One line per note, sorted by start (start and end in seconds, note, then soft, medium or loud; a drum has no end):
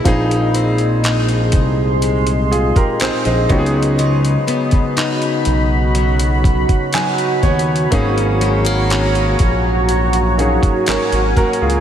0.00 0.15 B3 medium
0.00 2.58 G#4 medium
0.00 5.43 D#5 medium
0.04 1.55 A#1 loud
0.04 3.59 A#2 medium
0.04 3.45 F3 medium
0.04 3.45 A#3 medium
0.04 3.46 C4 medium
0.04 1.03 D#4 medium
0.04 3.46 D#4 medium
0.04 3.47 G#4 medium
0.04 1.99 G#4 medium
0.04 3.47 C6 medium
0.04 kick loud
0.04 closed hi-hat medium
0.31 closed hi-hat medium
0.54 3.00 C4 medium
0.54 closed hi-hat medium
0.78 closed hi-hat medium
1.04 3.01 D#4 medium
1.04 clap loud
1.04 closed hi-hat medium
1.29 closed hi-hat soft
1.52 2.72 C2 medium
1.52 kick medium
1.52 closed hi-hat medium
2.02 3.00 G#3 medium
2.02 closed hi-hat medium
2.27 closed hi-hat medium
2.51 2.75 F4 medium
2.51 2.75 G#4 medium
2.51 closed hi-hat medium
2.76 3.00 G4 medium
2.76 3.00 A#4 medium
2.76 kick loud
2.76 closed hi-hat medium
3.00 3.10 A#1 medium
3.00 5.95 G#3 medium
3.00 3.60 C4 medium
3.00 3.99 D#4 medium
3.00 3.25 G#4 medium
3.00 3.24 C5 medium
3.00 clap loud
3.00 closed hi-hat medium
3.25 3.47 A#1 medium
3.25 3.72 C5 medium
3.25 3.72 D#5 medium
3.25 closed hi-hat medium
3.48 4.37 C#2 loud
3.48 3.97 C#3 medium
3.48 7.39 F#3 medium
3.48 7.39 B3 medium
3.48 7.39 C#4 medium
3.48 7.40 D#4 medium
3.48 7.89 F#4 medium
3.48 3.57 G4 medium
3.48 7.89 B5 medium
3.48 kick loud
3.48 closed hi-hat soft
3.58 7.44 G#4 medium
3.66 closed hi-hat soft
3.83 closed hi-hat medium
3.98 7.92 C#3 medium
3.98 4.96 D#4 medium
3.98 closed hi-hat medium
4.25 closed hi-hat medium
4.48 6.93 B3 medium
4.48 closed hi-hat medium
4.71 kick loud
4.71 closed hi-hat soft
4.97 6.95 D#4 medium
4.97 clap loud
4.97 closed hi-hat medium
5.22 closed hi-hat soft
5.45 6.65 B1 medium
5.45 11.80 C#5 medium
5.45 closed hi-hat medium
5.95 6.94 F#3 medium
5.95 closed hi-hat medium
6.19 closed hi-hat medium
6.44 kick loud
6.44 closed hi-hat medium
6.69 kick loud
6.69 closed hi-hat soft
6.93 8.44 F#3 medium
6.93 7.42 B3 medium
6.93 7.92 D#4 medium
6.93 7.40 G#5 medium
6.93 clap loud
6.93 closed hi-hat medium
7.18 closed hi-hat medium
7.43 7.87 D#2 medium
7.43 8.02 B3 medium
7.43 7.89 C#5 medium
7.43 kick medium
7.43 closed hi-hat soft
7.59 closed hi-hat soft
7.76 closed hi-hat medium
7.91 9.36 G#1 loud
7.91 11.80 G#2 medium
7.91 10.33 F#3 medium
7.91 10.34 A#3 medium
7.91 10.34 C#4 medium
7.91 8.90 C#4 medium
7.91 10.35 D#4 medium
7.91 11.80 F#4 medium
7.91 10.35 G#4 medium
7.91 9.87 A#5 medium
7.91 kick loud
7.91 closed hi-hat medium
8.18 closed hi-hat medium
8.41 8.66 G#3 medium
8.41 closed hi-hat medium
8.65 10.87 A#3 medium
8.65 closed hi-hat medium
8.90 10.88 C#4 medium
8.90 clap loud
8.90 closed hi-hat medium
9.15 closed hi-hat medium
9.39 10.59 A#1 loud
9.39 kick loud
9.39 closed hi-hat medium
9.89 10.87 F#3 medium
9.89 11.80 G#5 medium
9.89 closed hi-hat medium
10.13 closed hi-hat medium
10.38 11.80 F#3 medium
10.38 11.80 A#3 medium
10.38 11.80 C#4 medium
10.38 11.80 D#4 medium
10.38 10.88 G#4 medium
10.38 closed hi-hat medium
10.63 kick loud
10.63 closed hi-hat medium
10.86 10.98 G#1 soft
10.86 11.80 F#3 medium
10.86 11.35 A#3 medium
10.86 11.80 C#4 medium
10.86 11.35 A#4 medium
10.86 11.34 C#5 medium
10.86 clap loud
10.86 closed hi-hat medium
11.12 11.34 G#1 medium
11.12 closed hi-hat medium
11.36 11.80 A#3 medium
11.36 11.61 F#4 medium
11.36 11.60 A#4 medium
11.36 kick medium
11.36 closed hi-hat soft
11.53 closed hi-hat soft
11.61 11.80 C#2 medium
11.61 11.80 F4 medium
11.61 11.80 G#4 medium
11.70 closed hi-hat medium